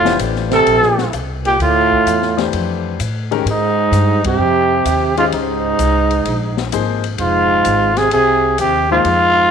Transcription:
Already playing: upright bass F1, trombone A2, trumpet F4
0.05 grand piano E3 A3 D4 G4 C5, snare
0.19 upright bass A1, hi-hat pedal, ride
0.36 snare
0.50 trombone C3, trumpet A4, snare, ride
0.67 upright bass A#1, ride
0.83 snare
0.98 snare
1.13 upright bass C2, hi-hat pedal, ride
1.44 trombone A#2, trumpet G4, ride
1.59 upright bass D2, trombone A2, trumpet F4, ride
1.92 kick
2.06 upright bass E2, hi-hat pedal, ride
2.22 snare
2.37 grand piano E3 A3 D4 G4 C5, snare, ride
2.53 upright bass F2, ride
3.00 upright bass A2, hi-hat pedal, ride
3.31 grand piano D#3 G#3 C#4 G4 A#4, ride
3.45 upright bass G#2, trombone G#2, ride
3.51 trumpet D#4
3.92 upright bass G2, hi-hat pedal, ride
4.24 trombone C3, trumpet G4, kick, ride
4.38 upright bass F2
4.85 upright bass D#2, hi-hat pedal, ride
5.17 trombone G#2, grand piano G#3 C#4 G4 C5 D#5, trumpet F4, ride
5.32 upright bass C#2, trombone G#2, trumpet D#4, ride
5.79 upright bass C2, hi-hat pedal, ride
6.11 ride
6.25 upright bass A#1, ride
6.57 snare
6.72 upright bass G#1, grand piano F3 A#3 D#4 G#4 C5, hi-hat pedal, ride
7.04 ride
7.18 upright bass F1, trombone G#2, trumpet F4, ride
7.65 upright bass G#1, hi-hat pedal, ride
7.97 trombone C3, trumpet G#4, snare, ride
8.11 upright bass C2, trombone C3, trumpet G#4, ride
8.58 upright bass D#2, trombone C3, trumpet G4, hi-hat pedal, ride
8.90 trombone G#2, grand piano F3 A#3 D#4 G#4 C5, trumpet F4
9.05 upright bass F2, ride

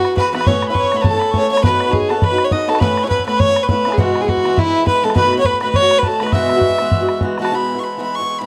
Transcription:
Already playing: steel-string acoustic guitar E4 F#4, fiddle F#4, tin whistle F#5
0.00 steel-string acoustic guitar B3
0.05 bodhran
0.15 steel-string acoustic guitar E3 B3 E4, fiddle B4, tin whistle B5, bodhran
0.19 steel-string acoustic guitar F#4
0.32 steel-string acoustic guitar E3 B3 E4 F#4, fiddle B4, tin whistle B5, bodhran
0.41 bodhran
0.45 steel-string acoustic guitar A2 A3 B3 C#4 E4, fiddle C#5, tin whistle C#6, bodhran
0.62 bodhran
0.67 steel-string acoustic guitar B3 E4, fiddle B4 C#5, tin whistle B5
0.72 steel-string acoustic guitar C#4, tin whistle C#6, bodhran
0.78 fiddle C#5
0.83 bodhran
0.92 steel-string acoustic guitar A3 B3 C#4 E4, bodhran
0.97 tin whistle B5
1.01 fiddle B4, tin whistle A5, bodhran
1.07 fiddle A4
1.14 steel-string acoustic guitar B3 C#4 E4
1.20 tin whistle B5, bodhran
1.31 steel-string acoustic guitar A3 C#4, tin whistle C#6, bodhran
1.35 steel-string acoustic guitar B3 E4, fiddle C#5
1.48 steel-string acoustic guitar A3 C#4, tin whistle C#6
1.52 steel-string acoustic guitar B3 E4, fiddle C#5
1.57 bodhran
1.62 steel-string acoustic guitar B3 D#4 F#4 C#5, fiddle B4, tin whistle B5, bodhran
1.80 bodhran
1.87 steel-string acoustic guitar D#4 F#4 C#5
1.91 fiddle G#4, tin whistle G#5, bodhran
2.01 bodhran
2.09 steel-string acoustic guitar B3 D#4 F#4 C#5, fiddle A4, tin whistle A5, bodhran
2.21 fiddle B4, tin whistle B5, bodhran
2.30 steel-string acoustic guitar D#4 F#4 C#5
2.38 bodhran
2.44 fiddle C#5
2.51 steel-string acoustic guitar B3 D#4 F#4 C#5, fiddle D#5, tin whistle D#6, bodhran
2.67 steel-string acoustic guitar B3 D#4 F#4 C#5, fiddle A4, tin whistle A5, bodhran
2.75 bodhran
2.80 steel-string acoustic guitar A2 A3 B3 C#4 E4, fiddle B4, tin whistle B5, bodhran
2.98 bodhran
3.03 steel-string acoustic guitar B3 C#4 E4, fiddle C#5, tin whistle C#6
3.09 fiddle B4, tin whistle B5, bodhran
3.19 bodhran
3.26 steel-string acoustic guitar A3 B3 C#4 E4, fiddle B4, tin whistle B5, bodhran
3.37 fiddle C#5, tin whistle C#6, bodhran
3.48 steel-string acoustic guitar B3 C#4 E4
3.56 bodhran
3.63 fiddle B4
3.68 steel-string acoustic guitar A3 B3 C#4, fiddle B4, tin whistle B5, bodhran
3.72 steel-string acoustic guitar E4
3.85 steel-string acoustic guitar A3 B3 C#4 E4, bodhran
3.90 fiddle G#4, tin whistle G#5, bodhran
3.96 steel-string acoustic guitar E2 B2 E3 G#3 B3 E4, fiddle F#4, tin whistle F#5, bodhran
4.15 bodhran
4.20 steel-string acoustic guitar E3 G#3 B3 E4, fiddle G#4, tin whistle G#5
4.27 fiddle F#4, tin whistle F#5, bodhran
4.37 bodhran
4.44 steel-string acoustic guitar E3 G#3 B3 E4, bodhran
4.56 fiddle E4, tin whistle E5, bodhran
4.64 steel-string acoustic guitar E3 G#3 B3 E4
4.85 steel-string acoustic guitar E3 G#3 B3 E4, fiddle B4, tin whistle B5, bodhran
5.02 steel-string acoustic guitar E3 G#3 B3 E4, fiddle A4
5.10 bodhran
5.14 steel-string acoustic guitar B2 D#3 A3 B3 F#4, fiddle B4, tin whistle B5, bodhran
5.33 bodhran
5.38 steel-string acoustic guitar A3 B3 F#4, fiddle C#5
5.45 fiddle B4, tin whistle B5, bodhran
5.53 bodhran
5.61 steel-string acoustic guitar D#3 A3 B3 F#4, fiddle B4, tin whistle B5, bodhran
5.74 fiddle C#5, tin whistle C#6, bodhran
5.82 steel-string acoustic guitar A3 B3 F#4
5.91 bodhran
5.98 fiddle B4, tin whistle B5
6.03 steel-string acoustic guitar D#3 A3 B3 F#4, tin whistle A5, bodhran
6.08 fiddle A4
6.20 steel-string acoustic guitar D#3 A3 B3 F#4, fiddle B4, tin whistle B5, bodhran
6.26 bodhran
6.32 steel-string acoustic guitar E2 B2 E3 G#3 B3 F#4, fiddle E5, tin whistle E6, bodhran
6.49 bodhran
6.56 steel-string acoustic guitar E3 G#3 B3 F#4
6.61 bodhran
6.70 bodhran
6.78 steel-string acoustic guitar E3 G#3 B3 F#4, bodhran
6.91 bodhran
7.01 steel-string acoustic guitar E3 G#3 B3 F#4
7.09 bodhran
7.21 steel-string acoustic guitar E3 G#3 B3 F#4, bodhran
7.38 steel-string acoustic guitar E3 G#3 B3, bodhran
7.42 steel-string acoustic guitar F#4, fiddle A5, bodhran
7.52 steel-string acoustic guitar E2 B2 E3 G#3 B3 E4, fiddle B5
7.75 steel-string acoustic guitar E3 G#3 B3 E4, fiddle C#6
7.84 fiddle B5
7.97 steel-string acoustic guitar E3 G#3 B3 E4
8.02 fiddle B5
8.15 fiddle C#6
8.19 steel-string acoustic guitar E3 G#3 B3 E4
8.39 steel-string acoustic guitar E3 G#3 B3, fiddle B5
8.43 fiddle B5

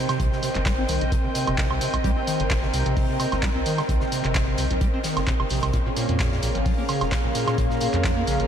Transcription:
Already playing: string machine C4 A#4 D#5, analog synth pad C5 G5
0.09 acid bass C3, snare, closed hi-hat, high woodblock
0.20 analog synth bass C2, acid bass C3, kick, closed hi-hat
0.32 acid bass C3, snare
0.43 acid bass C3, closed hi-hat, open hi-hat
0.55 analog synth bass G1, acid bass C2, clap, closed hi-hat
0.66 acid bass G3, kick, snare, clap, closed hi-hat
0.78 acid bass C4
0.88 analog synth bass C2, acid bass D#3, closed hi-hat, open hi-hat
1.01 analog synth bass A#1, acid bass C3, closed hi-hat
1.12 acid bass C3, kick, closed hi-hat
1.24 acid bass C3
1.35 acid bass C3, closed hi-hat, open hi-hat
1.47 analog synth bass G1, acid bass C3, closed hi-hat, high woodblock
1.58 acid bass C3, kick, snare, clap, closed hi-hat
1.71 analog synth bass C2, acid bass C3, high woodblock
1.81 acid bass C3, closed hi-hat, open hi-hat
1.94 acid bass C2, kick, closed hi-hat, high woodblock
2.04 analog synth bass C2, acid bass G3, kick, closed hi-hat
2.17 acid bass C4
2.27 acid bass D#3, closed hi-hat, open hi-hat
2.40 analog synth bass G1, acid bass C3, closed hi-hat
2.50 acid bass C3, kick, snare, clap, closed hi-hat
2.62 acid bass C3, snare
2.73 analog synth bass C2, acid bass C3, closed hi-hat, open hi-hat
2.86 analog synth bass A#1, acid bass C3, closed hi-hat
2.97 kick, closed hi-hat, open hi-hat
3.09 acid bass C3
3.20 acid bass C3, closed hi-hat, open hi-hat, high woodblock
3.32 analog synth bass G1, acid bass C2, snare, closed hi-hat, high woodblock
3.43 acid bass G3, kick, snare, clap, closed hi-hat
3.55 analog synth bass C2, acid bass C4
3.66 acid bass D#3, closed hi-hat, open hi-hat
3.78 acid bass C3, snare, closed hi-hat, high woodblock
3.89 analog synth bass C2, acid bass C3, kick, closed hi-hat
4.00 acid bass C3, snare
4.12 acid bass C3, closed hi-hat, open hi-hat
4.24 analog synth bass G1, acid bass C3, clap, closed hi-hat
4.35 acid bass C3, kick, snare, clap, closed hi-hat
4.47 acid bass C3
4.58 analog synth bass C2, acid bass C3, closed hi-hat, open hi-hat
4.71 analog synth bass A#1, acid bass C2, closed hi-hat
4.81 acid bass G3, kick, closed hi-hat
4.94 acid bass C4
5.04 acid bass D#3, snare, closed hi-hat, open hi-hat
5.17 analog synth bass G1, acid bass C3, snare, closed hi-hat, high woodblock
5.27 acid bass C3, kick, clap, closed hi-hat
5.40 analog synth bass G1, acid bass C3, high woodblock
5.50 analog synth bass A#1, acid bass C3, open hi-hat
5.63 analog synth bass C2, acid bass C3, kick, closed hi-hat, high woodblock
5.73 analog synth bass A#1, acid bass A#2, string machine A#3 C#4 G#4, analog synth pad A#4, kick, closed hi-hat
5.86 acid bass A#2
5.96 acid bass A#2, closed hi-hat, open hi-hat
6.01 analog synth pad F5
6.09 analog synth bass F2, acid bass A#2, closed hi-hat
6.19 acid bass A#2, kick, snare, clap, closed hi-hat
6.32 acid bass A#2, snare
6.43 analog synth bass A#1, acid bass A#2, closed hi-hat, open hi-hat
6.55 analog synth bass G#1, acid bass A#1, closed hi-hat
6.66 acid bass F3, kick, closed hi-hat, open hi-hat
6.78 acid bass A#3
6.89 acid bass C#3, closed hi-hat, open hi-hat, high woodblock
7.01 analog synth bass F1, acid bass A#2, snare, closed hi-hat, high woodblock
7.12 acid bass A#2, kick, snare, clap, closed hi-hat
7.24 analog synth bass A#1, acid bass A#2
7.35 acid bass A#2, closed hi-hat, open hi-hat
7.47 acid bass A#2, snare, closed hi-hat, high woodblock
7.58 analog synth bass A#1, acid bass A#2, kick, closed hi-hat
7.70 acid bass A#2, snare
7.81 acid bass A#2, closed hi-hat, open hi-hat
7.94 acid bass A#1, analog synth bass F2, clap, closed hi-hat
8.04 acid bass F3, kick, snare, clap, closed hi-hat
8.17 acid bass A#3
8.27 analog synth bass A#1, acid bass C#3, closed hi-hat, open hi-hat
8.40 analog synth bass G#1, acid bass A#2, closed hi-hat

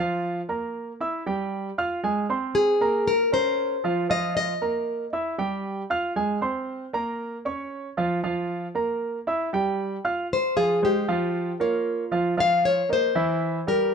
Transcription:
Already playing: grand piano F3 F4 F5
0.49 grand piano A#3 A#4 A#5
1.00 grand piano E4 E5 E6
1.26 grand piano G3 G4 G5
1.78 grand piano F4 F5 F6
2.03 grand piano G#3 G#4 G#5
2.29 grand piano C4 C5 C6
2.55 nylon-string guitar G#4
2.81 grand piano A#3 A#4 A#5
3.08 nylon-string guitar A#4
3.32 grand piano C#4 A#4 A#5, nylon-string guitar C5
3.84 grand piano F3 F4 F5
4.09 grand piano F3 F4 F5, nylon-string guitar D#5
4.37 nylon-string guitar D#5
4.62 grand piano A#3 A#4 A#5
5.13 grand piano E4 E5 E6
5.38 grand piano G3 G4 G5
5.90 grand piano F4 F5 F6
6.16 grand piano G#3 G#4 G#5
6.41 grand piano C4 C5 C6
6.93 grand piano A#3 A#4 A#5
7.45 grand piano C#4 C#5 C#6
7.97 grand piano F3 F4 F5
8.23 grand piano F3 F4 F5
8.75 grand piano A#3 A#4 A#5
9.27 grand piano E4 E5 E6
9.53 grand piano G3 G4 G5
10.05 grand piano F4 F5 F6
10.33 nylon-string guitar C5
10.56 grand piano F3 F4 F5, nylon-string guitar G#4
10.82 grand piano G#3 G#4 C5, nylon-string guitar G4
11.08 grand piano F3 F4 F5
11.60 grand piano A#3 A#4 C#5, nylon-string guitar F4
12.11 grand piano F3 F4 F5
12.37 grand piano F3 F4 F5, nylon-string guitar F5
12.65 nylon-string guitar C#5
12.89 grand piano A#3 A#4 D#5, nylon-string guitar C5
13.15 grand piano E3 E4 E5
13.67 grand piano G3 G4 A#4, nylon-string guitar A#4

